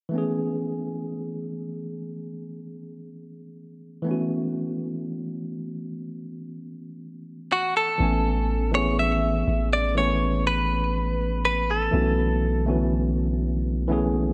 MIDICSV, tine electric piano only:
0, 0, Header, 1, 2, 480
1, 0, Start_track
1, 0, Key_signature, 3, "major"
1, 0, Tempo, 983607
1, 63, Time_signature, 4, 2, 24, 8
1, 6995, End_track
2, 0, Start_track
2, 0, Title_t, "Tine electric piano"
2, 0, Program_c, 0, 4
2, 44, Note_on_c, 0, 52, 68
2, 55, Note_on_c, 0, 57, 60
2, 66, Note_on_c, 0, 59, 59
2, 76, Note_on_c, 0, 61, 59
2, 87, Note_on_c, 0, 68, 78
2, 145, Control_c, 0, 64, 127
2, 1954, Note_off_c, 0, 52, 0
2, 1960, Note_off_c, 0, 57, 0
2, 1963, Note_on_c, 0, 52, 70
2, 1965, Note_off_c, 0, 59, 0
2, 1970, Note_off_c, 0, 61, 0
2, 1973, Note_on_c, 0, 57, 63
2, 1976, Note_off_c, 0, 68, 0
2, 1984, Note_on_c, 0, 59, 66
2, 1989, Control_c, 0, 64, 0
2, 1995, Note_on_c, 0, 61, 62
2, 2005, Note_on_c, 0, 66, 79
2, 2072, Control_c, 0, 64, 127
2, 3874, Note_off_c, 0, 52, 0
2, 3879, Note_off_c, 0, 57, 0
2, 3884, Note_off_c, 0, 59, 0
2, 3890, Note_off_c, 0, 61, 0
2, 3894, Note_on_c, 0, 52, 68
2, 3895, Note_off_c, 0, 66, 0
2, 3900, Note_on_c, 0, 57, 66
2, 3906, Note_on_c, 0, 59, 64
2, 3910, Control_c, 0, 64, 0
2, 3910, Note_on_c, 0, 61, 62
2, 3916, Note_on_c, 0, 80, 76
2, 3986, Control_c, 0, 64, 127
2, 4154, Note_off_c, 0, 52, 0
2, 4157, Note_off_c, 0, 57, 0
2, 4160, Note_off_c, 0, 59, 0
2, 4162, Note_off_c, 0, 61, 0
2, 4165, Note_off_c, 0, 80, 0
2, 4253, Note_on_c, 0, 52, 72
2, 4259, Note_on_c, 0, 57, 64
2, 4264, Note_on_c, 0, 59, 68
2, 4269, Note_on_c, 0, 61, 66
2, 4275, Note_on_c, 0, 68, 76
2, 4684, Note_off_c, 0, 52, 0
2, 4687, Note_off_c, 0, 57, 0
2, 4689, Note_off_c, 0, 59, 0
2, 4692, Note_off_c, 0, 61, 0
2, 4695, Note_off_c, 0, 68, 0
2, 4853, Note_on_c, 0, 52, 65
2, 4859, Note_on_c, 0, 57, 61
2, 4864, Note_on_c, 0, 59, 60
2, 4870, Note_on_c, 0, 61, 64
2, 4875, Note_on_c, 0, 71, 73
2, 5539, Note_off_c, 0, 52, 0
2, 5542, Note_off_c, 0, 57, 0
2, 5545, Note_off_c, 0, 59, 0
2, 5548, Note_off_c, 0, 61, 0
2, 5550, Note_off_c, 0, 71, 0
2, 5813, Note_on_c, 0, 52, 71
2, 5818, Note_on_c, 0, 57, 63
2, 5824, Note_on_c, 0, 59, 65
2, 5829, Control_c, 0, 64, 0
2, 5830, Note_on_c, 0, 61, 67
2, 5835, Note_on_c, 0, 66, 76
2, 5902, Control_c, 0, 64, 127
2, 6074, Note_off_c, 0, 52, 0
2, 6076, Note_off_c, 0, 57, 0
2, 6079, Note_off_c, 0, 59, 0
2, 6082, Note_off_c, 0, 61, 0
2, 6085, Note_off_c, 0, 66, 0
2, 6174, Note_on_c, 0, 50, 57
2, 6178, Note_on_c, 0, 57, 66
2, 6184, Note_on_c, 0, 59, 64
2, 6189, Note_on_c, 0, 61, 65
2, 6195, Note_on_c, 0, 66, 75
2, 6205, Note_on_c, 0, 52, 72
2, 6210, Note_off_c, 0, 50, 0
2, 6606, Note_off_c, 0, 57, 0
2, 6610, Note_off_c, 0, 59, 0
2, 6612, Note_off_c, 0, 61, 0
2, 6615, Note_off_c, 0, 66, 0
2, 6620, Note_off_c, 0, 52, 0
2, 6773, Note_on_c, 0, 52, 82
2, 6777, Note_on_c, 0, 57, 72
2, 6783, Note_on_c, 0, 59, 74
2, 6788, Note_on_c, 0, 61, 73
2, 6794, Note_on_c, 0, 68, 91
2, 6995, Note_off_c, 0, 52, 0
2, 6995, Note_off_c, 0, 57, 0
2, 6995, Note_off_c, 0, 59, 0
2, 6995, Note_off_c, 0, 61, 0
2, 6995, Note_off_c, 0, 68, 0
2, 6995, End_track
0, 0, End_of_file